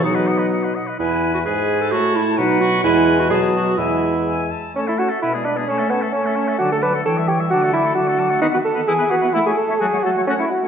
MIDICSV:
0, 0, Header, 1, 6, 480
1, 0, Start_track
1, 0, Tempo, 465839
1, 42, Time_signature, 2, 2, 24, 8
1, 3402, Tempo, 486618
1, 4842, Tempo, 459418
1, 11025, End_track
2, 0, Start_track
2, 0, Title_t, "Flute"
2, 0, Program_c, 0, 73
2, 41, Note_on_c, 0, 78, 56
2, 153, Note_on_c, 0, 75, 47
2, 169, Note_off_c, 0, 78, 0
2, 283, Note_on_c, 0, 78, 47
2, 298, Note_off_c, 0, 75, 0
2, 400, Note_on_c, 0, 75, 42
2, 415, Note_off_c, 0, 78, 0
2, 523, Note_off_c, 0, 75, 0
2, 530, Note_on_c, 0, 78, 43
2, 670, Note_on_c, 0, 75, 39
2, 685, Note_off_c, 0, 78, 0
2, 787, Note_on_c, 0, 78, 44
2, 803, Note_off_c, 0, 75, 0
2, 920, Note_on_c, 0, 75, 42
2, 935, Note_off_c, 0, 78, 0
2, 1029, Note_off_c, 0, 75, 0
2, 1035, Note_on_c, 0, 80, 57
2, 1477, Note_off_c, 0, 80, 0
2, 1501, Note_on_c, 0, 80, 57
2, 1971, Note_off_c, 0, 80, 0
2, 1981, Note_on_c, 0, 81, 64
2, 2450, Note_on_c, 0, 78, 65
2, 2465, Note_off_c, 0, 81, 0
2, 2925, Note_on_c, 0, 80, 67
2, 2941, Note_off_c, 0, 78, 0
2, 3392, Note_off_c, 0, 80, 0
2, 3398, Note_on_c, 0, 81, 63
2, 3864, Note_off_c, 0, 81, 0
2, 3870, Note_on_c, 0, 80, 48
2, 4140, Note_off_c, 0, 80, 0
2, 4361, Note_on_c, 0, 80, 53
2, 4594, Note_on_c, 0, 81, 53
2, 4609, Note_off_c, 0, 80, 0
2, 4836, Note_off_c, 0, 81, 0
2, 4844, Note_on_c, 0, 81, 43
2, 4957, Note_on_c, 0, 76, 43
2, 4973, Note_off_c, 0, 81, 0
2, 5081, Note_on_c, 0, 81, 39
2, 5097, Note_off_c, 0, 76, 0
2, 5198, Note_on_c, 0, 76, 37
2, 5213, Note_off_c, 0, 81, 0
2, 5317, Note_off_c, 0, 76, 0
2, 5324, Note_on_c, 0, 71, 42
2, 5457, Note_on_c, 0, 74, 39
2, 5473, Note_off_c, 0, 71, 0
2, 5563, Note_on_c, 0, 71, 41
2, 5579, Note_off_c, 0, 74, 0
2, 5671, Note_on_c, 0, 74, 38
2, 5687, Note_off_c, 0, 71, 0
2, 5795, Note_off_c, 0, 74, 0
2, 5802, Note_on_c, 0, 81, 42
2, 5922, Note_on_c, 0, 76, 39
2, 5938, Note_off_c, 0, 81, 0
2, 6044, Note_on_c, 0, 81, 41
2, 6060, Note_off_c, 0, 76, 0
2, 6167, Note_on_c, 0, 76, 39
2, 6182, Note_off_c, 0, 81, 0
2, 6263, Note_off_c, 0, 76, 0
2, 6270, Note_on_c, 0, 81, 42
2, 6390, Note_on_c, 0, 76, 41
2, 6406, Note_off_c, 0, 81, 0
2, 6518, Note_on_c, 0, 81, 44
2, 6533, Note_off_c, 0, 76, 0
2, 6636, Note_on_c, 0, 76, 39
2, 6652, Note_off_c, 0, 81, 0
2, 6756, Note_off_c, 0, 76, 0
2, 6762, Note_on_c, 0, 81, 47
2, 6871, Note_on_c, 0, 78, 41
2, 6887, Note_off_c, 0, 81, 0
2, 6992, Note_on_c, 0, 81, 43
2, 7007, Note_off_c, 0, 78, 0
2, 7114, Note_on_c, 0, 78, 43
2, 7130, Note_off_c, 0, 81, 0
2, 7233, Note_off_c, 0, 78, 0
2, 7239, Note_on_c, 0, 79, 48
2, 7378, Note_on_c, 0, 76, 43
2, 7394, Note_off_c, 0, 79, 0
2, 7484, Note_on_c, 0, 79, 46
2, 7500, Note_off_c, 0, 76, 0
2, 7599, Note_on_c, 0, 76, 44
2, 7614, Note_off_c, 0, 79, 0
2, 7705, Note_off_c, 0, 76, 0
2, 7711, Note_on_c, 0, 81, 48
2, 7829, Note_on_c, 0, 78, 44
2, 7845, Note_off_c, 0, 81, 0
2, 7951, Note_on_c, 0, 81, 47
2, 7966, Note_off_c, 0, 78, 0
2, 8053, Note_on_c, 0, 78, 48
2, 8068, Note_off_c, 0, 81, 0
2, 8172, Note_off_c, 0, 78, 0
2, 8179, Note_on_c, 0, 81, 50
2, 8301, Note_on_c, 0, 78, 50
2, 8316, Note_off_c, 0, 81, 0
2, 8422, Note_on_c, 0, 81, 53
2, 8437, Note_off_c, 0, 78, 0
2, 8534, Note_on_c, 0, 78, 50
2, 8549, Note_off_c, 0, 81, 0
2, 8649, Note_off_c, 0, 78, 0
2, 8655, Note_on_c, 0, 71, 65
2, 8710, Note_off_c, 0, 71, 0
2, 8756, Note_on_c, 0, 78, 44
2, 8815, Note_off_c, 0, 78, 0
2, 9022, Note_on_c, 0, 78, 47
2, 9076, Note_off_c, 0, 78, 0
2, 9148, Note_on_c, 0, 68, 66
2, 9201, Note_off_c, 0, 68, 0
2, 9275, Note_on_c, 0, 76, 55
2, 9326, Note_off_c, 0, 76, 0
2, 9375, Note_on_c, 0, 71, 55
2, 9431, Note_off_c, 0, 71, 0
2, 9495, Note_on_c, 0, 76, 53
2, 9551, Note_off_c, 0, 76, 0
2, 9622, Note_on_c, 0, 69, 63
2, 9677, Note_off_c, 0, 69, 0
2, 9741, Note_on_c, 0, 76, 48
2, 9796, Note_off_c, 0, 76, 0
2, 9980, Note_on_c, 0, 76, 53
2, 10036, Note_off_c, 0, 76, 0
2, 10112, Note_on_c, 0, 69, 71
2, 10166, Note_off_c, 0, 69, 0
2, 10230, Note_on_c, 0, 78, 50
2, 10285, Note_off_c, 0, 78, 0
2, 10356, Note_on_c, 0, 73, 50
2, 10409, Note_off_c, 0, 73, 0
2, 10485, Note_on_c, 0, 78, 59
2, 10537, Note_off_c, 0, 78, 0
2, 10583, Note_on_c, 0, 69, 59
2, 10640, Note_off_c, 0, 69, 0
2, 10703, Note_on_c, 0, 78, 41
2, 10761, Note_off_c, 0, 78, 0
2, 10960, Note_on_c, 0, 78, 45
2, 11016, Note_off_c, 0, 78, 0
2, 11025, End_track
3, 0, Start_track
3, 0, Title_t, "Oboe"
3, 0, Program_c, 1, 68
3, 39, Note_on_c, 1, 75, 57
3, 156, Note_on_c, 1, 71, 45
3, 171, Note_off_c, 1, 75, 0
3, 285, Note_on_c, 1, 75, 50
3, 300, Note_off_c, 1, 71, 0
3, 397, Note_on_c, 1, 71, 39
3, 412, Note_off_c, 1, 75, 0
3, 503, Note_off_c, 1, 71, 0
3, 509, Note_on_c, 1, 75, 41
3, 653, Note_on_c, 1, 71, 41
3, 669, Note_off_c, 1, 75, 0
3, 776, Note_on_c, 1, 75, 42
3, 792, Note_off_c, 1, 71, 0
3, 896, Note_on_c, 1, 71, 42
3, 912, Note_off_c, 1, 75, 0
3, 1021, Note_off_c, 1, 71, 0
3, 1027, Note_on_c, 1, 71, 60
3, 1473, Note_off_c, 1, 71, 0
3, 1505, Note_on_c, 1, 71, 57
3, 1977, Note_on_c, 1, 73, 65
3, 1993, Note_off_c, 1, 71, 0
3, 2452, Note_off_c, 1, 73, 0
3, 2458, Note_on_c, 1, 71, 65
3, 2916, Note_off_c, 1, 71, 0
3, 2928, Note_on_c, 1, 71, 75
3, 3415, Note_on_c, 1, 75, 65
3, 3430, Note_off_c, 1, 71, 0
3, 3879, Note_on_c, 1, 76, 55
3, 3894, Note_off_c, 1, 75, 0
3, 4606, Note_off_c, 1, 76, 0
3, 4840, Note_on_c, 1, 73, 46
3, 4961, Note_on_c, 1, 69, 40
3, 4977, Note_off_c, 1, 73, 0
3, 5079, Note_on_c, 1, 73, 41
3, 5095, Note_off_c, 1, 69, 0
3, 5183, Note_on_c, 1, 69, 38
3, 5198, Note_off_c, 1, 73, 0
3, 5313, Note_off_c, 1, 69, 0
3, 5319, Note_on_c, 1, 71, 40
3, 5443, Note_on_c, 1, 68, 39
3, 5459, Note_off_c, 1, 71, 0
3, 5559, Note_on_c, 1, 71, 39
3, 5575, Note_off_c, 1, 68, 0
3, 5687, Note_on_c, 1, 68, 40
3, 5703, Note_off_c, 1, 71, 0
3, 5806, Note_off_c, 1, 68, 0
3, 5815, Note_on_c, 1, 73, 46
3, 5912, Note_on_c, 1, 69, 40
3, 5928, Note_off_c, 1, 73, 0
3, 6037, Note_on_c, 1, 73, 42
3, 6052, Note_off_c, 1, 69, 0
3, 6158, Note_on_c, 1, 69, 40
3, 6174, Note_off_c, 1, 73, 0
3, 6276, Note_off_c, 1, 69, 0
3, 6282, Note_on_c, 1, 73, 42
3, 6410, Note_on_c, 1, 69, 39
3, 6426, Note_off_c, 1, 73, 0
3, 6512, Note_on_c, 1, 73, 42
3, 6528, Note_off_c, 1, 69, 0
3, 6638, Note_on_c, 1, 69, 41
3, 6653, Note_off_c, 1, 73, 0
3, 6751, Note_off_c, 1, 69, 0
3, 6758, Note_on_c, 1, 74, 50
3, 6892, Note_on_c, 1, 69, 43
3, 6908, Note_off_c, 1, 74, 0
3, 7003, Note_on_c, 1, 74, 44
3, 7018, Note_off_c, 1, 69, 0
3, 7131, Note_on_c, 1, 69, 41
3, 7147, Note_off_c, 1, 74, 0
3, 7237, Note_off_c, 1, 69, 0
3, 7243, Note_on_c, 1, 73, 42
3, 7361, Note_on_c, 1, 76, 44
3, 7377, Note_off_c, 1, 73, 0
3, 7479, Note_on_c, 1, 73, 47
3, 7495, Note_off_c, 1, 76, 0
3, 7604, Note_on_c, 1, 76, 43
3, 7619, Note_off_c, 1, 73, 0
3, 7719, Note_off_c, 1, 76, 0
3, 7730, Note_on_c, 1, 74, 54
3, 7855, Note_on_c, 1, 69, 47
3, 7871, Note_off_c, 1, 74, 0
3, 7968, Note_on_c, 1, 74, 47
3, 7983, Note_off_c, 1, 69, 0
3, 8076, Note_on_c, 1, 69, 43
3, 8091, Note_off_c, 1, 74, 0
3, 8179, Note_off_c, 1, 69, 0
3, 8185, Note_on_c, 1, 74, 47
3, 8315, Note_on_c, 1, 69, 50
3, 8330, Note_off_c, 1, 74, 0
3, 8435, Note_on_c, 1, 74, 50
3, 8451, Note_off_c, 1, 69, 0
3, 8546, Note_on_c, 1, 69, 47
3, 8562, Note_off_c, 1, 74, 0
3, 8653, Note_off_c, 1, 69, 0
3, 8659, Note_on_c, 1, 66, 75
3, 8713, Note_off_c, 1, 66, 0
3, 8782, Note_on_c, 1, 71, 47
3, 8835, Note_off_c, 1, 71, 0
3, 9009, Note_on_c, 1, 71, 51
3, 9066, Note_off_c, 1, 71, 0
3, 9146, Note_on_c, 1, 64, 68
3, 9199, Note_off_c, 1, 64, 0
3, 9260, Note_on_c, 1, 71, 60
3, 9314, Note_off_c, 1, 71, 0
3, 9375, Note_on_c, 1, 68, 51
3, 9430, Note_off_c, 1, 68, 0
3, 9493, Note_on_c, 1, 71, 52
3, 9549, Note_off_c, 1, 71, 0
3, 9634, Note_on_c, 1, 64, 70
3, 9685, Note_off_c, 1, 64, 0
3, 9759, Note_on_c, 1, 73, 49
3, 9810, Note_off_c, 1, 73, 0
3, 10006, Note_on_c, 1, 73, 47
3, 10056, Note_off_c, 1, 73, 0
3, 10121, Note_on_c, 1, 66, 59
3, 10173, Note_off_c, 1, 66, 0
3, 10258, Note_on_c, 1, 73, 49
3, 10306, Note_off_c, 1, 73, 0
3, 10370, Note_on_c, 1, 69, 47
3, 10421, Note_off_c, 1, 69, 0
3, 10500, Note_on_c, 1, 73, 54
3, 10548, Note_off_c, 1, 73, 0
3, 10623, Note_on_c, 1, 66, 76
3, 10672, Note_off_c, 1, 66, 0
3, 10745, Note_on_c, 1, 73, 47
3, 10794, Note_off_c, 1, 73, 0
3, 11025, End_track
4, 0, Start_track
4, 0, Title_t, "Bassoon"
4, 0, Program_c, 2, 70
4, 35, Note_on_c, 2, 47, 67
4, 775, Note_off_c, 2, 47, 0
4, 1028, Note_on_c, 2, 40, 62
4, 1511, Note_on_c, 2, 44, 57
4, 1527, Note_off_c, 2, 40, 0
4, 1993, Note_on_c, 2, 45, 66
4, 2009, Note_off_c, 2, 44, 0
4, 2452, Note_off_c, 2, 45, 0
4, 2458, Note_on_c, 2, 47, 69
4, 2916, Note_off_c, 2, 47, 0
4, 2923, Note_on_c, 2, 40, 84
4, 3406, Note_on_c, 2, 47, 72
4, 3421, Note_off_c, 2, 40, 0
4, 3876, Note_on_c, 2, 40, 61
4, 3891, Note_off_c, 2, 47, 0
4, 4605, Note_off_c, 2, 40, 0
4, 4838, Note_on_c, 2, 61, 70
4, 4894, Note_off_c, 2, 61, 0
4, 4972, Note_on_c, 2, 64, 57
4, 5025, Note_off_c, 2, 64, 0
4, 5078, Note_on_c, 2, 66, 68
4, 5188, Note_off_c, 2, 66, 0
4, 5327, Note_on_c, 2, 64, 68
4, 5435, Note_off_c, 2, 64, 0
4, 5558, Note_on_c, 2, 62, 56
4, 5667, Note_off_c, 2, 62, 0
4, 5797, Note_on_c, 2, 61, 67
4, 6023, Note_off_c, 2, 61, 0
4, 6029, Note_on_c, 2, 59, 66
4, 6140, Note_off_c, 2, 59, 0
4, 6265, Note_on_c, 2, 61, 64
4, 6744, Note_off_c, 2, 61, 0
4, 6749, Note_on_c, 2, 66, 77
4, 6874, Note_off_c, 2, 66, 0
4, 6890, Note_on_c, 2, 69, 67
4, 6943, Note_off_c, 2, 69, 0
4, 6999, Note_on_c, 2, 71, 77
4, 7108, Note_off_c, 2, 71, 0
4, 7245, Note_on_c, 2, 69, 74
4, 7352, Note_off_c, 2, 69, 0
4, 7474, Note_on_c, 2, 67, 69
4, 7582, Note_off_c, 2, 67, 0
4, 7708, Note_on_c, 2, 66, 88
4, 7942, Note_off_c, 2, 66, 0
4, 7946, Note_on_c, 2, 64, 80
4, 8167, Note_off_c, 2, 64, 0
4, 8173, Note_on_c, 2, 66, 78
4, 8645, Note_off_c, 2, 66, 0
4, 8661, Note_on_c, 2, 63, 88
4, 8715, Note_off_c, 2, 63, 0
4, 8792, Note_on_c, 2, 66, 73
4, 8843, Note_off_c, 2, 66, 0
4, 8901, Note_on_c, 2, 69, 88
4, 9144, Note_on_c, 2, 68, 87
4, 9160, Note_off_c, 2, 69, 0
4, 9381, Note_on_c, 2, 66, 84
4, 9397, Note_off_c, 2, 68, 0
4, 9623, Note_on_c, 2, 64, 94
4, 9639, Note_off_c, 2, 66, 0
4, 9744, Note_off_c, 2, 64, 0
4, 9756, Note_on_c, 2, 68, 80
4, 9870, Note_on_c, 2, 69, 78
4, 9886, Note_off_c, 2, 68, 0
4, 10102, Note_on_c, 2, 68, 86
4, 10117, Note_off_c, 2, 69, 0
4, 10353, Note_on_c, 2, 66, 77
4, 10369, Note_off_c, 2, 68, 0
4, 10593, Note_off_c, 2, 66, 0
4, 10600, Note_on_c, 2, 61, 85
4, 10654, Note_off_c, 2, 61, 0
4, 10727, Note_on_c, 2, 64, 70
4, 10840, Note_on_c, 2, 66, 66
4, 10855, Note_off_c, 2, 64, 0
4, 11025, Note_off_c, 2, 66, 0
4, 11025, End_track
5, 0, Start_track
5, 0, Title_t, "Clarinet"
5, 0, Program_c, 3, 71
5, 30, Note_on_c, 3, 63, 76
5, 758, Note_off_c, 3, 63, 0
5, 1012, Note_on_c, 3, 64, 77
5, 1353, Note_off_c, 3, 64, 0
5, 1386, Note_on_c, 3, 66, 74
5, 1440, Note_off_c, 3, 66, 0
5, 1498, Note_on_c, 3, 68, 76
5, 1868, Note_on_c, 3, 69, 82
5, 1884, Note_off_c, 3, 68, 0
5, 1975, Note_on_c, 3, 66, 97
5, 1991, Note_off_c, 3, 69, 0
5, 2224, Note_on_c, 3, 64, 77
5, 2239, Note_off_c, 3, 66, 0
5, 2458, Note_on_c, 3, 63, 87
5, 2474, Note_off_c, 3, 64, 0
5, 2686, Note_on_c, 3, 66, 101
5, 2701, Note_off_c, 3, 63, 0
5, 2917, Note_off_c, 3, 66, 0
5, 2923, Note_on_c, 3, 64, 98
5, 3293, Note_on_c, 3, 66, 82
5, 3309, Note_off_c, 3, 64, 0
5, 3393, Note_off_c, 3, 66, 0
5, 3399, Note_on_c, 3, 68, 88
5, 3506, Note_off_c, 3, 68, 0
5, 3631, Note_on_c, 3, 66, 76
5, 3870, Note_on_c, 3, 64, 69
5, 3885, Note_off_c, 3, 66, 0
5, 4602, Note_off_c, 3, 64, 0
5, 4836, Note_on_c, 3, 61, 46
5, 4952, Note_on_c, 3, 57, 39
5, 4968, Note_off_c, 3, 61, 0
5, 5076, Note_on_c, 3, 61, 40
5, 5092, Note_off_c, 3, 57, 0
5, 5211, Note_on_c, 3, 57, 39
5, 5227, Note_off_c, 3, 61, 0
5, 5327, Note_off_c, 3, 57, 0
5, 5333, Note_on_c, 3, 59, 38
5, 5459, Note_on_c, 3, 56, 40
5, 5475, Note_off_c, 3, 59, 0
5, 5593, Note_on_c, 3, 59, 37
5, 5609, Note_off_c, 3, 56, 0
5, 5702, Note_on_c, 3, 56, 38
5, 5718, Note_off_c, 3, 59, 0
5, 5810, Note_off_c, 3, 56, 0
5, 5816, Note_on_c, 3, 61, 47
5, 5942, Note_on_c, 3, 57, 41
5, 5957, Note_off_c, 3, 61, 0
5, 6056, Note_on_c, 3, 61, 42
5, 6071, Note_off_c, 3, 57, 0
5, 6179, Note_on_c, 3, 57, 40
5, 6194, Note_off_c, 3, 61, 0
5, 6283, Note_off_c, 3, 57, 0
5, 6289, Note_on_c, 3, 61, 40
5, 6400, Note_on_c, 3, 57, 39
5, 6416, Note_off_c, 3, 61, 0
5, 6516, Note_on_c, 3, 61, 42
5, 6532, Note_off_c, 3, 57, 0
5, 6630, Note_on_c, 3, 57, 41
5, 6646, Note_off_c, 3, 61, 0
5, 6751, Note_off_c, 3, 57, 0
5, 6757, Note_on_c, 3, 54, 49
5, 6877, Note_on_c, 3, 57, 44
5, 6893, Note_off_c, 3, 54, 0
5, 7007, Note_on_c, 3, 54, 45
5, 7023, Note_off_c, 3, 57, 0
5, 7129, Note_on_c, 3, 57, 44
5, 7144, Note_off_c, 3, 54, 0
5, 7228, Note_off_c, 3, 57, 0
5, 7235, Note_on_c, 3, 52, 42
5, 7359, Note_on_c, 3, 55, 46
5, 7375, Note_off_c, 3, 52, 0
5, 7467, Note_on_c, 3, 52, 45
5, 7483, Note_off_c, 3, 55, 0
5, 7595, Note_on_c, 3, 55, 45
5, 7611, Note_off_c, 3, 52, 0
5, 7705, Note_off_c, 3, 55, 0
5, 7712, Note_on_c, 3, 54, 53
5, 7820, Note_on_c, 3, 57, 47
5, 7835, Note_off_c, 3, 54, 0
5, 7942, Note_on_c, 3, 54, 43
5, 7958, Note_off_c, 3, 57, 0
5, 8047, Note_on_c, 3, 57, 48
5, 8062, Note_off_c, 3, 54, 0
5, 8165, Note_off_c, 3, 57, 0
5, 8171, Note_on_c, 3, 54, 46
5, 8300, Note_on_c, 3, 57, 46
5, 8315, Note_off_c, 3, 54, 0
5, 8416, Note_on_c, 3, 54, 52
5, 8431, Note_off_c, 3, 57, 0
5, 8540, Note_on_c, 3, 57, 47
5, 8555, Note_off_c, 3, 54, 0
5, 8660, Note_off_c, 3, 57, 0
5, 8666, Note_on_c, 3, 59, 71
5, 8718, Note_off_c, 3, 59, 0
5, 8789, Note_on_c, 3, 59, 49
5, 8841, Note_off_c, 3, 59, 0
5, 9033, Note_on_c, 3, 59, 49
5, 9084, Note_off_c, 3, 59, 0
5, 9148, Note_on_c, 3, 59, 61
5, 9201, Note_off_c, 3, 59, 0
5, 9273, Note_on_c, 3, 59, 51
5, 9324, Note_off_c, 3, 59, 0
5, 9400, Note_on_c, 3, 59, 53
5, 9450, Note_off_c, 3, 59, 0
5, 9525, Note_on_c, 3, 59, 57
5, 9574, Note_off_c, 3, 59, 0
5, 9638, Note_on_c, 3, 57, 72
5, 9689, Note_off_c, 3, 57, 0
5, 9768, Note_on_c, 3, 57, 46
5, 9817, Note_off_c, 3, 57, 0
5, 9997, Note_on_c, 3, 57, 46
5, 10050, Note_off_c, 3, 57, 0
5, 10123, Note_on_c, 3, 57, 63
5, 10174, Note_off_c, 3, 57, 0
5, 10249, Note_on_c, 3, 57, 50
5, 10299, Note_off_c, 3, 57, 0
5, 10377, Note_on_c, 3, 57, 54
5, 10426, Note_off_c, 3, 57, 0
5, 10485, Note_on_c, 3, 57, 57
5, 10537, Note_off_c, 3, 57, 0
5, 10609, Note_on_c, 3, 61, 70
5, 10661, Note_off_c, 3, 61, 0
5, 10737, Note_on_c, 3, 61, 40
5, 10787, Note_off_c, 3, 61, 0
5, 10978, Note_on_c, 3, 61, 43
5, 11025, Note_off_c, 3, 61, 0
5, 11025, End_track
6, 0, Start_track
6, 0, Title_t, "French horn"
6, 0, Program_c, 4, 60
6, 44, Note_on_c, 4, 54, 63
6, 779, Note_off_c, 4, 54, 0
6, 1504, Note_on_c, 4, 56, 60
6, 1994, Note_on_c, 4, 57, 72
6, 2010, Note_off_c, 4, 56, 0
6, 2460, Note_off_c, 4, 57, 0
6, 2470, Note_on_c, 4, 54, 70
6, 2922, Note_off_c, 4, 54, 0
6, 2926, Note_on_c, 4, 56, 76
6, 3402, Note_on_c, 4, 54, 65
6, 3416, Note_off_c, 4, 56, 0
6, 3873, Note_off_c, 4, 54, 0
6, 3878, Note_on_c, 4, 56, 53
6, 4591, Note_off_c, 4, 56, 0
6, 4834, Note_on_c, 4, 57, 56
6, 5267, Note_off_c, 4, 57, 0
6, 5336, Note_on_c, 4, 47, 48
6, 5754, Note_off_c, 4, 47, 0
6, 5804, Note_on_c, 4, 57, 56
6, 6226, Note_off_c, 4, 57, 0
6, 6293, Note_on_c, 4, 57, 53
6, 6712, Note_off_c, 4, 57, 0
6, 6764, Note_on_c, 4, 50, 59
6, 7188, Note_off_c, 4, 50, 0
6, 7254, Note_on_c, 4, 52, 58
6, 7666, Note_off_c, 4, 52, 0
6, 7718, Note_on_c, 4, 50, 65
6, 8131, Note_off_c, 4, 50, 0
6, 8184, Note_on_c, 4, 50, 63
6, 8604, Note_off_c, 4, 50, 0
6, 8659, Note_on_c, 4, 51, 69
6, 8713, Note_off_c, 4, 51, 0
6, 8784, Note_on_c, 4, 51, 50
6, 8837, Note_off_c, 4, 51, 0
6, 9031, Note_on_c, 4, 51, 51
6, 9082, Note_off_c, 4, 51, 0
6, 9147, Note_on_c, 4, 52, 68
6, 9200, Note_off_c, 4, 52, 0
6, 9268, Note_on_c, 4, 52, 55
6, 9320, Note_off_c, 4, 52, 0
6, 9386, Note_on_c, 4, 52, 53
6, 9439, Note_off_c, 4, 52, 0
6, 9506, Note_on_c, 4, 52, 54
6, 9559, Note_off_c, 4, 52, 0
6, 9636, Note_on_c, 4, 57, 68
6, 9687, Note_off_c, 4, 57, 0
6, 9745, Note_on_c, 4, 57, 52
6, 9799, Note_off_c, 4, 57, 0
6, 10000, Note_on_c, 4, 57, 50
6, 10051, Note_off_c, 4, 57, 0
6, 10118, Note_on_c, 4, 54, 67
6, 10171, Note_off_c, 4, 54, 0
6, 10241, Note_on_c, 4, 54, 53
6, 10293, Note_off_c, 4, 54, 0
6, 10369, Note_on_c, 4, 54, 49
6, 10419, Note_off_c, 4, 54, 0
6, 10491, Note_on_c, 4, 54, 53
6, 10542, Note_off_c, 4, 54, 0
6, 10613, Note_on_c, 4, 57, 69
6, 10664, Note_off_c, 4, 57, 0
6, 10718, Note_on_c, 4, 57, 47
6, 10773, Note_off_c, 4, 57, 0
6, 10969, Note_on_c, 4, 57, 42
6, 11023, Note_off_c, 4, 57, 0
6, 11025, End_track
0, 0, End_of_file